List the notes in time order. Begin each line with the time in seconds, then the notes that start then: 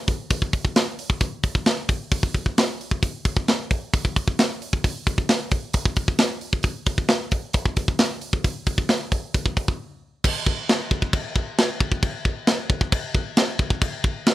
0.08 kick, open hi-hat
0.30 kick, open hi-hat
0.42 kick
0.53 kick, open hi-hat
0.65 kick
0.76 snare, open hi-hat
0.99 open hi-hat
1.10 kick
1.21 kick, open hi-hat
1.43 kick, open hi-hat
1.55 kick
1.66 snare, open hi-hat
1.89 kick, open hi-hat
2.12 kick, open hi-hat
2.23 kick
2.34 kick, open hi-hat
2.46 kick
2.58 snare, open hi-hat
2.81 open hi-hat
2.91 kick
3.03 kick, open hi-hat
3.25 kick, open hi-hat
3.37 kick
3.48 snare, open hi-hat
3.71 kick, open hi-hat
3.94 kick, open hi-hat
4.05 kick
4.16 kick, open hi-hat
4.28 kick
4.39 snare, open hi-hat
4.62 open hi-hat
4.73 kick
4.84 kick, open hi-hat
5.07 kick, open hi-hat
5.18 kick
5.29 snare, open hi-hat
5.51 kick, open hi-hat
5.74 kick, open hi-hat
5.85 kick
5.96 kick, open hi-hat
6.08 kick
6.19 snare, open hi-hat
6.41 open hi-hat
6.53 kick
6.63 kick, open hi-hat
6.86 kick, open hi-hat
6.98 kick
7.09 snare, open hi-hat
7.31 kick, open hi-hat
7.53 kick, open hi-hat
7.66 kick
7.76 kick, open hi-hat
7.88 kick
7.99 snare, open hi-hat
8.21 open hi-hat
8.33 kick
8.44 kick, open hi-hat
8.67 kick, open hi-hat
8.78 kick
8.89 snare, open hi-hat
9.12 kick, open hi-hat
9.34 kick, open hi-hat
9.46 kick
9.57 kick, open hi-hat
9.68 kick
10.24 kick, crash
10.46 kick
10.69 snare, crash
10.91 kick
11.02 kick
11.13 kick, crash
11.36 kick
11.58 snare, crash
11.80 kick
11.92 kick
12.03 kick, crash
12.25 kick
12.47 snare, crash
12.70 kick
12.81 kick
12.92 kick, crash
13.15 kick
13.37 snare, crash
13.59 kick
13.70 kick
13.81 kick, crash
14.04 kick
14.27 snare, crash